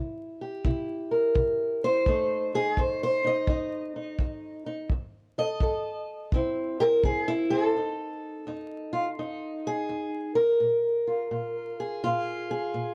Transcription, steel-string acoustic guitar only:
0.00 0.60 C3 medium
0.00 0.64 E4 medium
0.41 2.04 G4 medium
0.65 1.31 C3 medium
0.65 1.82 E4 soft
1.11 1.83 A#4 medium
1.35 2.01 C3 medium
1.84 2.05 E4 soft
1.84 2.54 C5 loud
2.07 2.73 F2 medium
2.07 4.88 A3 medium
2.07 2.53 D#4 medium
2.54 3.23 D#4 soft
2.54 2.78 G#4 loud
2.78 3.44 F2 medium
2.78 3.02 C5 medium
3.03 3.26 C5 loud
3.24 3.48 D#4 soft
3.24 4.68 D#5 loud
3.48 4.15 F2 medium
3.48 3.95 D#4 medium
3.96 4.65 D#4 medium
4.20 4.86 F2 medium
4.66 4.88 D#4 medium
4.91 5.57 F2 medium
5.38 5.62 A4 medium
5.38 6.33 D#5 loud
5.62 6.28 F2 medium
5.62 6.31 A4 medium
6.33 6.99 C3 medium
6.33 7.51 C4 medium
6.33 6.79 E4 soft
6.80 7.27 E4 medium
6.80 6.82 G4 loud
6.80 7.04 A#4 medium
7.05 7.71 C3 medium
7.05 7.28 G#4 medium
7.28 7.75 E4 loud
7.50 7.73 C4 medium
7.50 9.65 A4 loud
7.76 8.42 F2 medium
7.76 8.47 D#4 soft
8.47 9.13 F2 medium
8.47 9.18 D#4 soft
8.93 9.08 F4 medium
9.19 9.85 F2 medium
9.19 10.37 D#4 medium
9.67 10.35 G#4 medium
9.89 10.56 F2 medium
10.35 11.79 A#4 medium
10.60 11.27 A#2 medium
11.08 11.31 F4 soft
11.31 11.99 A#2 medium
11.31 12.03 F4 soft
11.80 12.49 G#4 medium
12.04 12.71 A#2 medium
12.04 12.94 F4 loud
12.51 12.94 G#4 medium
12.74 12.94 A#2 medium

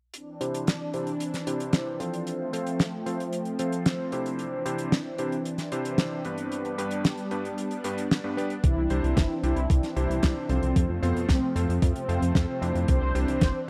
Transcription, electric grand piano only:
0.41 0.65 C3 medium
0.41 0.65 D4 medium
0.41 0.65 E4 medium
0.41 0.65 G4 medium
0.41 0.65 C5 medium
0.94 1.09 C3 medium
0.94 1.09 D4 medium
0.94 1.09 E4 medium
0.94 1.09 G4 medium
0.94 1.09 C5 medium
1.47 1.97 C3 medium
1.47 1.97 D4 medium
1.47 1.97 E4 medium
1.47 1.97 G4 medium
1.47 1.97 C5 medium
2.00 2.50 F3 medium
2.00 2.50 C4 medium
2.00 2.50 F4 medium
2.00 2.50 A4 medium
2.00 2.50 C5 medium
2.53 2.77 F3 medium
2.53 2.77 C4 medium
2.53 2.77 F4 medium
2.53 2.77 A4 medium
2.53 2.77 C5 medium
3.06 3.21 F3 medium
3.06 3.21 C4 medium
3.06 3.21 F4 medium
3.06 3.21 A4 medium
3.06 3.21 C5 medium
3.59 4.09 F3 medium
3.59 4.09 C4 medium
3.59 4.09 F4 medium
3.59 4.09 A4 medium
3.59 4.09 C5 medium
4.12 4.62 C3 medium
4.12 4.62 D4 medium
4.12 4.62 E4 medium
4.12 4.62 G4 medium
4.12 4.62 C5 medium
4.65 4.90 C3 medium
4.65 4.90 D4 medium
4.65 4.90 E4 medium
4.65 4.90 G4 medium
4.65 4.90 C5 medium
5.19 5.34 C3 medium
5.19 5.34 D4 medium
5.19 5.34 E4 medium
5.19 5.34 G4 medium
5.19 5.34 C5 medium
5.72 6.22 C3 medium
5.72 6.22 D4 medium
5.72 6.22 E4 medium
5.72 6.22 G4 medium
5.72 6.22 C5 medium
6.25 6.75 G2 medium
6.25 6.75 B3 medium
6.25 6.75 D4 medium
6.25 6.75 G4 medium
6.25 6.75 B4 medium
6.78 7.02 G2 medium
6.78 7.02 B3 medium
6.78 7.02 D4 medium
6.78 7.02 G4 medium
6.78 7.02 B4 medium
7.31 7.46 G2 medium
7.31 7.46 B3 medium
7.31 7.46 D4 medium
7.31 7.46 G4 medium
7.31 7.46 B4 medium
7.84 7.99 G2 medium
7.84 7.99 B3 medium
7.84 7.99 D4 medium
7.84 7.99 G4 medium
7.84 7.99 B4 medium
8.24 8.35 G2 medium
8.24 8.35 B3 medium
8.24 8.35 D4 medium
8.24 8.35 G4 medium
8.24 8.35 B4 medium
8.37 8.52 B3 medium
8.37 8.52 D4 medium
8.37 8.52 G4 medium
8.37 8.52 B4 loud
8.90 9.15 C3 medium
8.90 9.15 D4 medium
8.90 9.15 E4 medium
8.90 9.15 G4 medium
8.90 9.15 C5 medium
9.43 9.59 C3 medium
9.43 9.59 D4 medium
9.43 9.59 E4 medium
9.43 9.59 G4 medium
9.43 9.59 C5 medium
9.96 10.46 C3 medium
9.96 10.46 D4 medium
9.96 10.46 E4 medium
9.96 10.46 G4 medium
9.96 10.46 C5 medium
10.49 10.99 F3 medium
10.49 10.99 C4 medium
10.49 10.99 F4 medium
10.49 10.99 A4 medium
10.49 10.99 C5 medium
11.03 11.27 F3 medium
11.03 11.27 C4 medium
11.03 11.27 F4 medium
11.03 11.27 A4 medium
11.03 11.27 C5 medium
11.56 11.71 F3 medium
11.56 11.71 C4 medium
11.56 11.71 F4 medium
11.56 11.71 A4 medium
11.56 11.71 C5 medium
12.09 12.59 F3 medium
12.09 12.59 C4 medium
12.09 12.59 F4 medium
12.09 12.59 A4 medium
12.09 12.59 C5 medium
12.62 13.12 C3 medium
12.62 13.12 D4 medium
12.62 13.12 E4 medium
12.62 13.12 G4 medium
12.62 13.12 C5 medium
13.15 13.39 C3 medium
13.15 13.39 D4 medium
13.15 13.39 E4 medium
13.15 13.39 G4 medium
13.15 13.39 C5 loud

